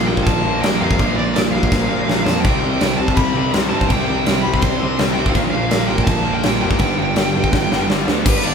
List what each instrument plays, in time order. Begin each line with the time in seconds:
Already playing: distorted electric guitar A#2 D3 F3 A#3 F4
0.06 picked electric bass A#1, overdriven electric guitar A#2 F3 A#3, lead electric guitar G5
0.17 kick
0.23 picked electric bass A#1, overdriven electric guitar A#2 F3 A#3, lead electric guitar A5, kick, crash
0.43 picked electric bass A#1, overdriven electric guitar A#2 F3 A#3
0.61 picked electric bass A#1, overdriven electric guitar A#2 F3 A#3, lead electric guitar G5, snare, crash
0.80 picked electric bass F2, overdriven electric guitar A#2 F3 A#3, distorted electric guitar D3 F4, lead electric guitar F5
0.91 kick
0.98 picked electric bass A#1, overdriven electric guitar A#2 F3 A#3, distorted electric guitar D3 F4, kick, crash
1.16 picked electric bass A#1, overdriven electric guitar A#2 F3 A#3, lead electric guitar D5
1.35 picked electric bass A#1, overdriven electric guitar A#2 F3 A#3, lead electric guitar D5, snare, crash
1.52 picked electric bass A#1, overdriven electric guitar A#2 F3 A#3, lead electric guitar F5
1.63 kick
1.70 picked electric bass A#1, overdriven electric guitar A#2 F3 A#3, kick, snare
1.89 picked electric bass A#1, overdriven electric guitar A#2 F3 A#3
2.07 picked electric bass A#1, overdriven electric guitar A#2 F3 A#3, snare
2.24 picked electric bass F2, overdriven electric guitar A#2 F3 A#3, distorted electric guitar D3 F4, lead electric guitar A5, snare
2.40 overdriven electric guitar C3 G3 C4, lead electric guitar G5
2.44 picked electric bass C2, distorted electric guitar E4, kick, crash
2.60 picked electric bass C2, overdriven electric guitar C3 G3 C4, lead electric guitar G5
2.80 picked electric bass C2, overdriven electric guitar C3 G3 C4, snare, crash
2.97 picked electric bass C2, overdriven electric guitar C3 G3 C4, lead electric guitar A5
3.08 kick
3.15 picked electric bass C2, overdriven electric guitar C3 G3 C4, lead electric guitar B5, kick, crash
3.34 picked electric bass C2, overdriven electric guitar C3 G3 C4
3.53 picked electric bass C2, overdriven electric guitar C3 G3 C4, snare, crash
3.69 picked electric bass G2, overdriven electric guitar C3 G3 C4, distorted electric guitar E4, lead electric guitar A5
3.81 kick
3.88 picked electric bass C2, overdriven electric guitar C3 G3 C4, lead electric guitar G5, kick, crash
3.92 distorted electric guitar E4
4.05 overdriven electric guitar C3 G3 C4, lead electric guitar G5
4.09 picked electric bass C2
4.26 picked electric bass C2, overdriven electric guitar C3 G3 C4, snare, crash
4.41 overdriven electric guitar C3 G3 C4, lead electric guitar B5
4.46 picked electric bass C2
4.54 lead electric guitar B5, kick
4.60 picked electric bass C2, overdriven electric guitar C3 G3 C4, lead electric guitar C6, kick, crash
4.79 picked electric bass C2, overdriven electric guitar C3 G3 C4
4.97 picked electric bass C2, overdriven electric guitar C3 G3 C4, snare, crash
5.14 overdriven electric guitar C3 G3 C4, distorted electric guitar E4, lead electric guitar G5
5.18 picked electric bass B1
5.26 lead electric guitar F5, kick
5.34 picked electric bass A#1, overdriven electric guitar A#2 F3 A#3, distorted electric guitar D3 D4, kick, crash
5.51 picked electric bass A#1, overdriven electric guitar A#2 F3 A#3, lead electric guitar F5
5.69 picked electric bass A#1, overdriven electric guitar A#2 F3 A#3, snare, crash
5.87 picked electric bass A#1, overdriven electric guitar A#2 F3 A#3, lead electric guitar G5
5.98 kick
6.04 picked electric bass A#1, overdriven electric guitar A#2, lead electric guitar A5, kick, crash
6.08 overdriven electric guitar F3 A#3
6.27 picked electric bass A#1, overdriven electric guitar A#2 F3 A#3
6.34 lead electric guitar G5
6.43 picked electric bass A#1, overdriven electric guitar A#2 F3 A#3, snare, crash
6.60 picked electric bass F1, overdriven electric guitar A#2 F3 A#3, distorted electric guitar D3 D4, lead electric guitar G5
6.71 kick
6.79 picked electric bass G1, overdriven electric guitar G2 D3 G3, distorted electric guitar B3 D4, kick, crash
6.98 picked electric bass G1, overdriven electric guitar G2 D3 G3
7.16 picked electric bass G1, overdriven electric guitar G2 D3 G3, snare, crash
7.35 picked electric bass G1, overdriven electric guitar G2 D3 G3
7.44 kick
7.53 picked electric bass G1, overdriven electric guitar G2 D3 G3, kick, snare
7.71 picked electric bass G1, overdriven electric guitar G2 D3 G3, snare
7.90 picked electric bass G1, overdriven electric guitar G2 D3 G3, snare
8.06 picked electric bass D2, overdriven electric guitar G2 D3 G3, distorted electric guitar B3 D4, snare
8.24 picked electric bass G1, distorted electric guitar G2 D3 G3 B3 D4, kick, crash
8.29 lead electric guitar B4
8.43 picked electric bass G1, distorted electric guitar G2 D3 G3 B3 D4, lead electric guitar D5, crash